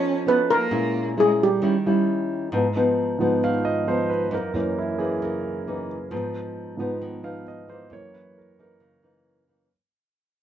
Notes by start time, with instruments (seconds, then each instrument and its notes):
Already playing: nylon-string guitar F3 C#4 D#4 A4, cello C#4, steel pan C#5
0.26 cello B3, nylon-string guitar C#4 D#4 A4, steel pan B4
0.51 cello A#3, steel pan A#4
0.71 nylon-string guitar A#2 G#3 C#4 E4
1.17 nylon-string guitar G#3 C#4 E4, cello G#3, steel pan G#4
1.40 cello G3, steel pan G4
1.62 nylon-string guitar D#3 G3 C#4 E4
1.86 nylon-string guitar G3 C#4 E4
2.52 nylon-string guitar G#2 F3 B3 D#4
2.75 nylon-string guitar F3 B3 D#4
3.19 grand piano G#2 F3 B3, nylon-string guitar F3 B3 D#4
3.43 nylon-string guitar D#3, grand piano F5
3.65 grand piano D#5
3.87 nylon-string guitar F3 B3 D#4, grand piano C5
4.10 grand piano B4
4.31 nylon-string guitar F#2 E3 A#3 D#4, grand piano A#4
4.54 grand piano F#2 E3 A#3 C#4, nylon-string guitar E3 A#3 D#4
4.79 grand piano E4
4.99 nylon-string guitar E3 A#3 D#4, grand piano G#4
5.22 nylon-string guitar C#3, grand piano A#4
5.67 nylon-string guitar E3 A#3 D#4
6.11 nylon-string guitar G#2 F3 B3 D#4
6.77 grand piano G#2 F3 B3, nylon-string guitar F3 B3 D#4
7.01 nylon-string guitar D#3
7.23 nylon-string guitar F3 B3 D#4, grand piano F5
7.48 grand piano D#5
7.68 nylon-string guitar E3 A#3 D#4, grand piano C5
7.90 nylon-string guitar F#2, grand piano F#2 E3 A#3 C#5
8.14 grand piano B4
8.38 grand piano A#4
8.59 nylon-string guitar E3 A#3 D#4, grand piano A#4
8.80 nylon-string guitar C#3
9.02 nylon-string guitar E3 A#3 D#4
9.48 nylon-string guitar E3 A#3 D#4